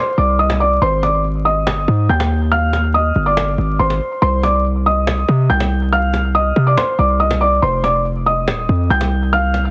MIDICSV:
0, 0, Header, 1, 4, 480
1, 0, Start_track
1, 0, Key_signature, -3, "minor"
1, 0, Tempo, 425532
1, 922, Time_signature, 4, 2, 24, 8
1, 10947, End_track
2, 0, Start_track
2, 0, Title_t, "Felt piano"
2, 0, Program_c, 0, 0
2, 0, Note_on_c, 0, 72, 73
2, 0, Note_on_c, 0, 84, 93
2, 172, Note_off_c, 0, 84, 0
2, 177, Note_off_c, 0, 72, 0
2, 200, Note_on_c, 0, 86, 81
2, 209, Note_on_c, 0, 74, 60
2, 412, Note_off_c, 0, 86, 0
2, 417, Note_off_c, 0, 74, 0
2, 441, Note_on_c, 0, 87, 88
2, 450, Note_on_c, 0, 75, 67
2, 653, Note_off_c, 0, 87, 0
2, 658, Note_off_c, 0, 75, 0
2, 680, Note_on_c, 0, 86, 85
2, 689, Note_on_c, 0, 74, 73
2, 892, Note_off_c, 0, 86, 0
2, 897, Note_off_c, 0, 74, 0
2, 922, Note_on_c, 0, 84, 105
2, 931, Note_on_c, 0, 72, 80
2, 1133, Note_off_c, 0, 84, 0
2, 1138, Note_off_c, 0, 72, 0
2, 1160, Note_on_c, 0, 86, 68
2, 1169, Note_on_c, 0, 74, 58
2, 1372, Note_off_c, 0, 86, 0
2, 1377, Note_off_c, 0, 74, 0
2, 1637, Note_on_c, 0, 87, 81
2, 1646, Note_on_c, 0, 75, 62
2, 2316, Note_off_c, 0, 87, 0
2, 2320, Note_off_c, 0, 75, 0
2, 2363, Note_on_c, 0, 91, 76
2, 2372, Note_on_c, 0, 79, 68
2, 2574, Note_off_c, 0, 91, 0
2, 2579, Note_off_c, 0, 79, 0
2, 2837, Note_on_c, 0, 89, 106
2, 2846, Note_on_c, 0, 77, 86
2, 3290, Note_off_c, 0, 89, 0
2, 3295, Note_off_c, 0, 77, 0
2, 3319, Note_on_c, 0, 87, 88
2, 3328, Note_on_c, 0, 75, 63
2, 3658, Note_off_c, 0, 87, 0
2, 3663, Note_off_c, 0, 75, 0
2, 3678, Note_on_c, 0, 86, 82
2, 3687, Note_on_c, 0, 74, 64
2, 4243, Note_off_c, 0, 86, 0
2, 4248, Note_off_c, 0, 74, 0
2, 4279, Note_on_c, 0, 84, 85
2, 4288, Note_on_c, 0, 72, 65
2, 4731, Note_off_c, 0, 84, 0
2, 4736, Note_off_c, 0, 72, 0
2, 4759, Note_on_c, 0, 84, 107
2, 4768, Note_on_c, 0, 72, 85
2, 4972, Note_off_c, 0, 84, 0
2, 4977, Note_off_c, 0, 72, 0
2, 5000, Note_on_c, 0, 86, 83
2, 5010, Note_on_c, 0, 74, 68
2, 5212, Note_off_c, 0, 86, 0
2, 5218, Note_off_c, 0, 74, 0
2, 5484, Note_on_c, 0, 87, 90
2, 5493, Note_on_c, 0, 75, 64
2, 6159, Note_off_c, 0, 87, 0
2, 6164, Note_off_c, 0, 75, 0
2, 6200, Note_on_c, 0, 91, 85
2, 6209, Note_on_c, 0, 79, 62
2, 6412, Note_off_c, 0, 91, 0
2, 6417, Note_off_c, 0, 79, 0
2, 6684, Note_on_c, 0, 89, 100
2, 6693, Note_on_c, 0, 77, 78
2, 7134, Note_off_c, 0, 89, 0
2, 7138, Note_off_c, 0, 77, 0
2, 7160, Note_on_c, 0, 87, 99
2, 7168, Note_on_c, 0, 75, 70
2, 7499, Note_off_c, 0, 87, 0
2, 7503, Note_off_c, 0, 75, 0
2, 7520, Note_on_c, 0, 86, 77
2, 7529, Note_on_c, 0, 74, 68
2, 7626, Note_off_c, 0, 86, 0
2, 7632, Note_off_c, 0, 74, 0
2, 7640, Note_on_c, 0, 84, 96
2, 7649, Note_on_c, 0, 72, 74
2, 7852, Note_off_c, 0, 84, 0
2, 7857, Note_off_c, 0, 72, 0
2, 7881, Note_on_c, 0, 86, 76
2, 7890, Note_on_c, 0, 74, 61
2, 8093, Note_off_c, 0, 86, 0
2, 8097, Note_off_c, 0, 74, 0
2, 8119, Note_on_c, 0, 87, 86
2, 8128, Note_on_c, 0, 75, 74
2, 8331, Note_off_c, 0, 87, 0
2, 8336, Note_off_c, 0, 75, 0
2, 8358, Note_on_c, 0, 86, 89
2, 8366, Note_on_c, 0, 74, 75
2, 8571, Note_off_c, 0, 86, 0
2, 8576, Note_off_c, 0, 74, 0
2, 8600, Note_on_c, 0, 84, 98
2, 8609, Note_on_c, 0, 72, 79
2, 8812, Note_off_c, 0, 84, 0
2, 8817, Note_off_c, 0, 72, 0
2, 8839, Note_on_c, 0, 86, 78
2, 8848, Note_on_c, 0, 74, 63
2, 9052, Note_off_c, 0, 86, 0
2, 9057, Note_off_c, 0, 74, 0
2, 9320, Note_on_c, 0, 87, 83
2, 9330, Note_on_c, 0, 75, 57
2, 9997, Note_off_c, 0, 87, 0
2, 10002, Note_off_c, 0, 75, 0
2, 10044, Note_on_c, 0, 91, 96
2, 10053, Note_on_c, 0, 79, 66
2, 10254, Note_off_c, 0, 91, 0
2, 10259, Note_off_c, 0, 79, 0
2, 10522, Note_on_c, 0, 89, 105
2, 10531, Note_on_c, 0, 77, 82
2, 10947, Note_off_c, 0, 77, 0
2, 10947, Note_off_c, 0, 89, 0
2, 10947, End_track
3, 0, Start_track
3, 0, Title_t, "808-style bass"
3, 0, Program_c, 1, 38
3, 201, Note_on_c, 1, 36, 105
3, 892, Note_off_c, 1, 36, 0
3, 921, Note_on_c, 1, 32, 108
3, 1881, Note_on_c, 1, 31, 105
3, 1898, Note_off_c, 1, 32, 0
3, 2109, Note_off_c, 1, 31, 0
3, 2121, Note_on_c, 1, 44, 104
3, 2352, Note_off_c, 1, 44, 0
3, 2361, Note_on_c, 1, 39, 109
3, 3516, Note_off_c, 1, 39, 0
3, 3561, Note_on_c, 1, 31, 106
3, 4022, Note_off_c, 1, 31, 0
3, 4040, Note_on_c, 1, 32, 102
3, 4271, Note_off_c, 1, 32, 0
3, 4281, Note_on_c, 1, 32, 106
3, 4511, Note_off_c, 1, 32, 0
3, 4761, Note_on_c, 1, 36, 111
3, 5916, Note_off_c, 1, 36, 0
3, 5961, Note_on_c, 1, 48, 109
3, 6191, Note_off_c, 1, 48, 0
3, 6201, Note_on_c, 1, 36, 108
3, 7356, Note_off_c, 1, 36, 0
3, 7401, Note_on_c, 1, 48, 104
3, 7631, Note_off_c, 1, 48, 0
3, 7881, Note_on_c, 1, 36, 102
3, 8572, Note_off_c, 1, 36, 0
3, 8601, Note_on_c, 1, 29, 109
3, 9562, Note_on_c, 1, 27, 102
3, 9579, Note_off_c, 1, 29, 0
3, 9789, Note_off_c, 1, 27, 0
3, 9802, Note_on_c, 1, 41, 103
3, 10032, Note_off_c, 1, 41, 0
3, 10041, Note_on_c, 1, 36, 113
3, 10947, Note_off_c, 1, 36, 0
3, 10947, End_track
4, 0, Start_track
4, 0, Title_t, "Cajon"
4, 441, Note_on_c, 9, 38, 34
4, 521, Note_off_c, 9, 38, 0
4, 521, Note_on_c, 9, 38, 33
4, 561, Note_off_c, 9, 38, 0
4, 561, Note_on_c, 9, 38, 104
4, 601, Note_off_c, 9, 38, 0
4, 601, Note_on_c, 9, 38, 33
4, 681, Note_off_c, 9, 38, 0
4, 681, Note_on_c, 9, 38, 33
4, 761, Note_off_c, 9, 38, 0
4, 761, Note_on_c, 9, 38, 34
4, 841, Note_off_c, 9, 38, 0
4, 841, Note_on_c, 9, 38, 35
4, 921, Note_off_c, 9, 38, 0
4, 921, Note_on_c, 9, 38, 45
4, 1034, Note_off_c, 9, 38, 0
4, 1162, Note_on_c, 9, 38, 70
4, 1274, Note_off_c, 9, 38, 0
4, 1401, Note_on_c, 9, 38, 52
4, 1514, Note_off_c, 9, 38, 0
4, 1641, Note_on_c, 9, 38, 42
4, 1754, Note_off_c, 9, 38, 0
4, 1881, Note_on_c, 9, 38, 122
4, 1994, Note_off_c, 9, 38, 0
4, 2361, Note_on_c, 9, 38, 34
4, 2441, Note_off_c, 9, 38, 0
4, 2441, Note_on_c, 9, 38, 35
4, 2482, Note_off_c, 9, 38, 0
4, 2482, Note_on_c, 9, 38, 106
4, 2522, Note_off_c, 9, 38, 0
4, 2522, Note_on_c, 9, 38, 34
4, 2602, Note_off_c, 9, 38, 0
4, 2602, Note_on_c, 9, 38, 44
4, 2714, Note_off_c, 9, 38, 0
4, 2841, Note_on_c, 9, 38, 44
4, 2954, Note_off_c, 9, 38, 0
4, 3081, Note_on_c, 9, 38, 69
4, 3161, Note_off_c, 9, 38, 0
4, 3161, Note_on_c, 9, 38, 27
4, 3241, Note_off_c, 9, 38, 0
4, 3241, Note_on_c, 9, 38, 21
4, 3321, Note_off_c, 9, 38, 0
4, 3321, Note_on_c, 9, 38, 52
4, 3434, Note_off_c, 9, 38, 0
4, 3561, Note_on_c, 9, 38, 36
4, 3641, Note_off_c, 9, 38, 0
4, 3641, Note_on_c, 9, 38, 35
4, 3721, Note_off_c, 9, 38, 0
4, 3721, Note_on_c, 9, 38, 36
4, 3801, Note_off_c, 9, 38, 0
4, 3801, Note_on_c, 9, 38, 124
4, 3881, Note_off_c, 9, 38, 0
4, 3881, Note_on_c, 9, 38, 35
4, 3962, Note_off_c, 9, 38, 0
4, 3962, Note_on_c, 9, 38, 36
4, 4075, Note_off_c, 9, 38, 0
4, 4281, Note_on_c, 9, 38, 25
4, 4342, Note_off_c, 9, 38, 0
4, 4342, Note_on_c, 9, 38, 31
4, 4401, Note_off_c, 9, 38, 0
4, 4401, Note_on_c, 9, 38, 73
4, 4514, Note_off_c, 9, 38, 0
4, 4521, Note_on_c, 9, 38, 45
4, 4634, Note_off_c, 9, 38, 0
4, 4761, Note_on_c, 9, 38, 46
4, 4874, Note_off_c, 9, 38, 0
4, 5002, Note_on_c, 9, 38, 67
4, 5115, Note_off_c, 9, 38, 0
4, 5241, Note_on_c, 9, 38, 50
4, 5354, Note_off_c, 9, 38, 0
4, 5482, Note_on_c, 9, 38, 43
4, 5595, Note_off_c, 9, 38, 0
4, 5721, Note_on_c, 9, 38, 127
4, 5834, Note_off_c, 9, 38, 0
4, 6202, Note_on_c, 9, 38, 34
4, 6282, Note_off_c, 9, 38, 0
4, 6282, Note_on_c, 9, 38, 34
4, 6321, Note_off_c, 9, 38, 0
4, 6321, Note_on_c, 9, 38, 107
4, 6361, Note_off_c, 9, 38, 0
4, 6361, Note_on_c, 9, 38, 35
4, 6441, Note_off_c, 9, 38, 0
4, 6441, Note_on_c, 9, 38, 46
4, 6553, Note_off_c, 9, 38, 0
4, 6681, Note_on_c, 9, 38, 47
4, 6794, Note_off_c, 9, 38, 0
4, 6921, Note_on_c, 9, 38, 67
4, 7034, Note_off_c, 9, 38, 0
4, 7161, Note_on_c, 9, 38, 50
4, 7274, Note_off_c, 9, 38, 0
4, 7401, Note_on_c, 9, 38, 43
4, 7514, Note_off_c, 9, 38, 0
4, 7641, Note_on_c, 9, 38, 126
4, 7754, Note_off_c, 9, 38, 0
4, 8122, Note_on_c, 9, 38, 34
4, 8201, Note_off_c, 9, 38, 0
4, 8201, Note_on_c, 9, 38, 33
4, 8241, Note_off_c, 9, 38, 0
4, 8241, Note_on_c, 9, 38, 108
4, 8282, Note_off_c, 9, 38, 0
4, 8282, Note_on_c, 9, 38, 34
4, 8362, Note_off_c, 9, 38, 0
4, 8362, Note_on_c, 9, 38, 33
4, 8442, Note_off_c, 9, 38, 0
4, 8442, Note_on_c, 9, 38, 34
4, 8521, Note_off_c, 9, 38, 0
4, 8521, Note_on_c, 9, 38, 34
4, 8602, Note_off_c, 9, 38, 0
4, 8602, Note_on_c, 9, 38, 44
4, 8714, Note_off_c, 9, 38, 0
4, 8842, Note_on_c, 9, 38, 69
4, 8955, Note_off_c, 9, 38, 0
4, 9082, Note_on_c, 9, 38, 53
4, 9195, Note_off_c, 9, 38, 0
4, 9321, Note_on_c, 9, 38, 43
4, 9434, Note_off_c, 9, 38, 0
4, 9561, Note_on_c, 9, 38, 127
4, 9673, Note_off_c, 9, 38, 0
4, 10041, Note_on_c, 9, 38, 34
4, 10121, Note_off_c, 9, 38, 0
4, 10121, Note_on_c, 9, 38, 33
4, 10160, Note_off_c, 9, 38, 0
4, 10160, Note_on_c, 9, 38, 106
4, 10201, Note_off_c, 9, 38, 0
4, 10201, Note_on_c, 9, 38, 35
4, 10281, Note_off_c, 9, 38, 0
4, 10281, Note_on_c, 9, 38, 46
4, 10393, Note_off_c, 9, 38, 0
4, 10521, Note_on_c, 9, 38, 45
4, 10634, Note_off_c, 9, 38, 0
4, 10761, Note_on_c, 9, 38, 70
4, 10842, Note_off_c, 9, 38, 0
4, 10842, Note_on_c, 9, 38, 29
4, 10947, Note_off_c, 9, 38, 0
4, 10947, End_track
0, 0, End_of_file